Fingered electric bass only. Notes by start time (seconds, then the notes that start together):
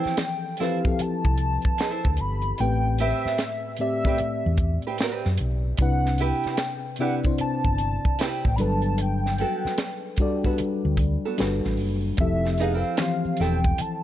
0.05 muted fingered electric bass stroke
1.00 muted fingered electric bass stroke
1.25 C2
2.06 D2
2.20 G1
2.60 A1
3.25 muted fingered electric bass stroke
4.20 muted fingered electric bass stroke
4.46 E2
5.26 F#2
5.40 B1
5.79 C2
6.45 muted fingered electric bass stroke
7.40 muted fingered electric bass stroke
7.66 G1
8.46 A1
8.60 G1
9.65 muted fingered electric bass stroke
10.60 muted fingered electric bass stroke
10.85 D2
11.40 G1
11.65 A1
11.79 F#1
12.19 F1
13.25 muted fingered electric bass stroke
13.40 E1
13.80 muted fingered electric bass stroke